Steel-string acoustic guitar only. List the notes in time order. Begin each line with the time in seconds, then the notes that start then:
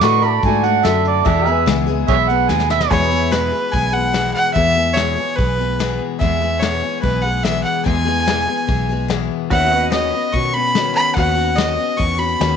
0.01 D3 A3 D4 F#4
0.22 A3 D4 F#4
0.44 D3 A3 D4 F#4
0.63 A3 D4 F#4
0.83 D3 A3 D4 F#4
1.25 E2 B2 E3 G#3 B3 G#4
1.46 E3 G#3 B3 G#4
1.66 E2 B2 E3 G#3 B3 G#4
1.86 G#3 B3 G#4
1.91 E3
2.08 E3 G#3 B3 G#4
2.29 E3 G#3 B3 G#4
2.50 B2 G#3 B3 G#4
2.91 E2 B2 E3 G#3 B3 G#4
3.10 E3 G#3 B3 G#4
3.31 E2 B2 E3 G#3 B3 G#4
3.52 E3 G#3 B3 G#4
3.72 E3 G#3 B3 G#4
3.93 E3 G#3 B3 G#4
4.13 E2 B2 E3 G#3 B3 G#4
4.54 E2 B2 E3 G#3 B3 G#4
4.75 E3 G#3 B3 G#4
4.95 E2 B2 E3 G#3 B3 G#4
5.15 E3 G#3 B3 G#4
5.36 E3 G#3 B3 G#4
5.58 E3 G#3 B3 G#4
5.79 E2 B2 E3 G#3 B3 G#4
6.20 E2 B2 E3 G#3 B3 G#4
6.40 E3 G#3 B3 G#4
6.62 E2 B2 E3 G#3 B3 G#4
6.82 E3 G#3 B3 G#4
7.02 E3 G#3 B3 G#4
7.24 E3 G#3 B3 G#4
7.45 E2 B2 E3 G#3 B3 G#4
7.85 E2 B2 E3 G#3 B3 G#4
8.05 E3 G#3 B3 G#4
8.26 E2 B2 E3 G#3 B3 G#4
8.47 E3 G#3 B3 G#4
8.67 E3 G#3 B3 G#4
8.89 E3 G#3 B3 G#4
9.08 E2 B2 E3 G#3 B3 G#4
9.51 D#3 B3 C#4 F#4
9.71 B3 C#4 F#4
9.92 D#3 B3 C#4 F#4
10.12 C#4 F#4
10.16 B3
10.33 D#3 B3 C#4 F#4
10.54 B3 C#4 F#4
10.75 D#3 B3 C#4 F#4
11.15 D#3 B3 C#4 F#4
11.35 B3 C#4 F#4
11.56 D#3 B3 C#4 F#4
11.76 B3 C#4 F#4
11.97 D#3 B3 C#4 F#4
12.18 C#4 F#4
12.22 B3
12.39 D#3 B3 C#4 F#4